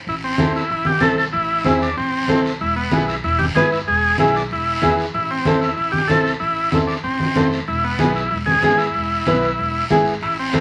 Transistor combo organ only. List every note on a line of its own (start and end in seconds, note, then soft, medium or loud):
0.09 0.15 E4 medium
0.24 0.53 C4 medium
0.56 0.70 E4 medium
0.71 0.87 E4 medium
0.87 1.03 G4 medium
1.01 1.16 A4 loud
1.18 1.25 A4 medium
1.33 1.64 E4 loud
1.65 1.82 E4 medium
1.82 1.96 D4 medium
1.97 2.41 C4 medium
2.61 2.75 E4 medium
2.76 3.06 B3 medium
3.08 3.15 E4 medium
3.24 3.40 E4 loud
3.39 3.46 G4 medium
3.55 3.70 G#4 loud
3.72 3.79 E4 medium
3.88 4.17 G#4 loud
4.20 4.36 E4 medium
4.36 4.43 D4 medium
4.52 4.96 E4 medium
5.14 5.31 E4 medium
5.31 5.60 C4 medium
5.61 5.75 E4 medium
5.76 5.92 E4 medium
5.92 6.07 G4 medium
6.08 6.22 A4 medium
6.23 6.31 A4 medium
6.40 6.70 E4 medium
6.71 6.78 E4 medium
6.87 6.95 D4 medium
7.04 7.48 C4 medium
7.68 7.84 E4 medium
7.84 8.13 B3 medium
8.15 8.29 E4 medium
8.31 8.38 E4 medium
8.46 8.79 G#4 medium
8.78 9.85 E4 medium
10.23 10.37 E4 medium
10.39 10.60 C4 medium